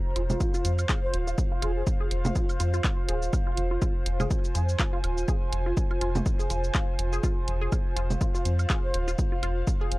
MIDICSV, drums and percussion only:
0, 0, Header, 1, 2, 480
1, 0, Start_track
1, 0, Key_signature, -4, "minor"
1, 0, Tempo, 487805
1, 1358, Time_signature, 4, 2, 24, 8
1, 9825, End_track
2, 0, Start_track
2, 0, Title_t, "Drums"
2, 157, Note_on_c, 9, 42, 96
2, 255, Note_off_c, 9, 42, 0
2, 293, Note_on_c, 9, 82, 44
2, 294, Note_on_c, 9, 64, 96
2, 392, Note_off_c, 9, 82, 0
2, 393, Note_off_c, 9, 64, 0
2, 398, Note_on_c, 9, 36, 116
2, 398, Note_on_c, 9, 82, 54
2, 496, Note_off_c, 9, 36, 0
2, 496, Note_off_c, 9, 82, 0
2, 533, Note_on_c, 9, 82, 41
2, 631, Note_off_c, 9, 82, 0
2, 638, Note_on_c, 9, 42, 85
2, 638, Note_on_c, 9, 82, 50
2, 736, Note_off_c, 9, 42, 0
2, 736, Note_off_c, 9, 82, 0
2, 773, Note_on_c, 9, 82, 41
2, 774, Note_on_c, 9, 76, 67
2, 871, Note_off_c, 9, 82, 0
2, 872, Note_off_c, 9, 76, 0
2, 878, Note_on_c, 9, 36, 122
2, 878, Note_on_c, 9, 39, 108
2, 878, Note_on_c, 9, 82, 55
2, 976, Note_off_c, 9, 39, 0
2, 976, Note_off_c, 9, 82, 0
2, 977, Note_off_c, 9, 36, 0
2, 1118, Note_on_c, 9, 42, 90
2, 1216, Note_off_c, 9, 42, 0
2, 1255, Note_on_c, 9, 82, 45
2, 1353, Note_off_c, 9, 82, 0
2, 1358, Note_on_c, 9, 36, 120
2, 1359, Note_on_c, 9, 82, 50
2, 1457, Note_off_c, 9, 36, 0
2, 1457, Note_off_c, 9, 82, 0
2, 1598, Note_on_c, 9, 42, 95
2, 1598, Note_on_c, 9, 76, 63
2, 1696, Note_off_c, 9, 42, 0
2, 1696, Note_off_c, 9, 76, 0
2, 1837, Note_on_c, 9, 82, 55
2, 1838, Note_on_c, 9, 36, 123
2, 1936, Note_off_c, 9, 36, 0
2, 1936, Note_off_c, 9, 82, 0
2, 2078, Note_on_c, 9, 42, 99
2, 2176, Note_off_c, 9, 42, 0
2, 2212, Note_on_c, 9, 82, 42
2, 2213, Note_on_c, 9, 48, 54
2, 2213, Note_on_c, 9, 64, 95
2, 2311, Note_off_c, 9, 82, 0
2, 2312, Note_off_c, 9, 48, 0
2, 2312, Note_off_c, 9, 64, 0
2, 2316, Note_on_c, 9, 82, 56
2, 2318, Note_on_c, 9, 36, 119
2, 2415, Note_off_c, 9, 82, 0
2, 2416, Note_off_c, 9, 36, 0
2, 2453, Note_on_c, 9, 82, 41
2, 2454, Note_on_c, 9, 76, 60
2, 2551, Note_off_c, 9, 82, 0
2, 2552, Note_off_c, 9, 76, 0
2, 2558, Note_on_c, 9, 42, 95
2, 2558, Note_on_c, 9, 82, 48
2, 2656, Note_off_c, 9, 42, 0
2, 2656, Note_off_c, 9, 82, 0
2, 2693, Note_on_c, 9, 82, 41
2, 2792, Note_off_c, 9, 82, 0
2, 2797, Note_on_c, 9, 39, 107
2, 2797, Note_on_c, 9, 82, 53
2, 2798, Note_on_c, 9, 36, 126
2, 2896, Note_off_c, 9, 36, 0
2, 2896, Note_off_c, 9, 39, 0
2, 2896, Note_off_c, 9, 82, 0
2, 3036, Note_on_c, 9, 42, 97
2, 3135, Note_off_c, 9, 42, 0
2, 3172, Note_on_c, 9, 82, 44
2, 3271, Note_off_c, 9, 82, 0
2, 3277, Note_on_c, 9, 76, 64
2, 3277, Note_on_c, 9, 82, 49
2, 3278, Note_on_c, 9, 36, 122
2, 3375, Note_off_c, 9, 82, 0
2, 3376, Note_off_c, 9, 36, 0
2, 3376, Note_off_c, 9, 76, 0
2, 3517, Note_on_c, 9, 42, 94
2, 3615, Note_off_c, 9, 42, 0
2, 3756, Note_on_c, 9, 82, 53
2, 3757, Note_on_c, 9, 36, 126
2, 3855, Note_off_c, 9, 82, 0
2, 3856, Note_off_c, 9, 36, 0
2, 3996, Note_on_c, 9, 42, 101
2, 4095, Note_off_c, 9, 42, 0
2, 4133, Note_on_c, 9, 64, 91
2, 4133, Note_on_c, 9, 76, 62
2, 4133, Note_on_c, 9, 82, 41
2, 4231, Note_off_c, 9, 64, 0
2, 4231, Note_off_c, 9, 76, 0
2, 4231, Note_off_c, 9, 82, 0
2, 4237, Note_on_c, 9, 36, 124
2, 4237, Note_on_c, 9, 82, 55
2, 4335, Note_off_c, 9, 82, 0
2, 4336, Note_off_c, 9, 36, 0
2, 4373, Note_on_c, 9, 82, 40
2, 4472, Note_off_c, 9, 82, 0
2, 4477, Note_on_c, 9, 42, 94
2, 4477, Note_on_c, 9, 82, 46
2, 4576, Note_off_c, 9, 42, 0
2, 4576, Note_off_c, 9, 82, 0
2, 4613, Note_on_c, 9, 82, 39
2, 4712, Note_off_c, 9, 82, 0
2, 4717, Note_on_c, 9, 36, 123
2, 4718, Note_on_c, 9, 39, 109
2, 4718, Note_on_c, 9, 82, 51
2, 4816, Note_off_c, 9, 36, 0
2, 4817, Note_off_c, 9, 39, 0
2, 4817, Note_off_c, 9, 82, 0
2, 4958, Note_on_c, 9, 42, 92
2, 4958, Note_on_c, 9, 76, 65
2, 5056, Note_off_c, 9, 42, 0
2, 5056, Note_off_c, 9, 76, 0
2, 5093, Note_on_c, 9, 82, 43
2, 5191, Note_off_c, 9, 82, 0
2, 5197, Note_on_c, 9, 82, 48
2, 5198, Note_on_c, 9, 36, 117
2, 5296, Note_off_c, 9, 36, 0
2, 5296, Note_off_c, 9, 82, 0
2, 5437, Note_on_c, 9, 42, 92
2, 5536, Note_off_c, 9, 42, 0
2, 5678, Note_on_c, 9, 36, 124
2, 5678, Note_on_c, 9, 82, 53
2, 5776, Note_off_c, 9, 36, 0
2, 5776, Note_off_c, 9, 82, 0
2, 5814, Note_on_c, 9, 76, 65
2, 5912, Note_off_c, 9, 76, 0
2, 5917, Note_on_c, 9, 42, 99
2, 6015, Note_off_c, 9, 42, 0
2, 6054, Note_on_c, 9, 82, 40
2, 6055, Note_on_c, 9, 48, 53
2, 6055, Note_on_c, 9, 64, 90
2, 6152, Note_off_c, 9, 82, 0
2, 6153, Note_off_c, 9, 48, 0
2, 6153, Note_off_c, 9, 64, 0
2, 6158, Note_on_c, 9, 36, 125
2, 6158, Note_on_c, 9, 82, 50
2, 6256, Note_off_c, 9, 82, 0
2, 6257, Note_off_c, 9, 36, 0
2, 6294, Note_on_c, 9, 82, 39
2, 6392, Note_off_c, 9, 82, 0
2, 6398, Note_on_c, 9, 42, 93
2, 6398, Note_on_c, 9, 82, 47
2, 6496, Note_off_c, 9, 42, 0
2, 6496, Note_off_c, 9, 82, 0
2, 6533, Note_on_c, 9, 82, 37
2, 6632, Note_off_c, 9, 82, 0
2, 6637, Note_on_c, 9, 39, 104
2, 6637, Note_on_c, 9, 82, 48
2, 6638, Note_on_c, 9, 76, 63
2, 6639, Note_on_c, 9, 36, 127
2, 6736, Note_off_c, 9, 39, 0
2, 6736, Note_off_c, 9, 82, 0
2, 6737, Note_off_c, 9, 36, 0
2, 6737, Note_off_c, 9, 76, 0
2, 6877, Note_on_c, 9, 42, 99
2, 6976, Note_off_c, 9, 42, 0
2, 7013, Note_on_c, 9, 82, 41
2, 7112, Note_off_c, 9, 82, 0
2, 7119, Note_on_c, 9, 36, 115
2, 7119, Note_on_c, 9, 82, 49
2, 7217, Note_off_c, 9, 36, 0
2, 7217, Note_off_c, 9, 82, 0
2, 7358, Note_on_c, 9, 42, 91
2, 7457, Note_off_c, 9, 42, 0
2, 7598, Note_on_c, 9, 82, 52
2, 7599, Note_on_c, 9, 36, 117
2, 7599, Note_on_c, 9, 76, 64
2, 7696, Note_off_c, 9, 82, 0
2, 7697, Note_off_c, 9, 36, 0
2, 7697, Note_off_c, 9, 76, 0
2, 7838, Note_on_c, 9, 42, 94
2, 7936, Note_off_c, 9, 42, 0
2, 7974, Note_on_c, 9, 82, 42
2, 7975, Note_on_c, 9, 64, 87
2, 8073, Note_off_c, 9, 64, 0
2, 8073, Note_off_c, 9, 82, 0
2, 8079, Note_on_c, 9, 36, 115
2, 8079, Note_on_c, 9, 82, 52
2, 8177, Note_off_c, 9, 36, 0
2, 8178, Note_off_c, 9, 82, 0
2, 8215, Note_on_c, 9, 82, 38
2, 8313, Note_off_c, 9, 82, 0
2, 8318, Note_on_c, 9, 42, 87
2, 8318, Note_on_c, 9, 82, 45
2, 8417, Note_off_c, 9, 42, 0
2, 8417, Note_off_c, 9, 82, 0
2, 8454, Note_on_c, 9, 82, 39
2, 8455, Note_on_c, 9, 76, 61
2, 8552, Note_off_c, 9, 82, 0
2, 8553, Note_off_c, 9, 76, 0
2, 8558, Note_on_c, 9, 39, 99
2, 8558, Note_on_c, 9, 82, 50
2, 8559, Note_on_c, 9, 36, 123
2, 8656, Note_off_c, 9, 39, 0
2, 8656, Note_off_c, 9, 82, 0
2, 8657, Note_off_c, 9, 36, 0
2, 8798, Note_on_c, 9, 42, 91
2, 8896, Note_off_c, 9, 42, 0
2, 8934, Note_on_c, 9, 82, 41
2, 9032, Note_off_c, 9, 82, 0
2, 9038, Note_on_c, 9, 82, 50
2, 9039, Note_on_c, 9, 36, 111
2, 9136, Note_off_c, 9, 82, 0
2, 9137, Note_off_c, 9, 36, 0
2, 9278, Note_on_c, 9, 42, 91
2, 9279, Note_on_c, 9, 76, 60
2, 9376, Note_off_c, 9, 42, 0
2, 9377, Note_off_c, 9, 76, 0
2, 9518, Note_on_c, 9, 36, 120
2, 9518, Note_on_c, 9, 82, 54
2, 9617, Note_off_c, 9, 36, 0
2, 9617, Note_off_c, 9, 82, 0
2, 9757, Note_on_c, 9, 42, 94
2, 9825, Note_off_c, 9, 42, 0
2, 9825, End_track
0, 0, End_of_file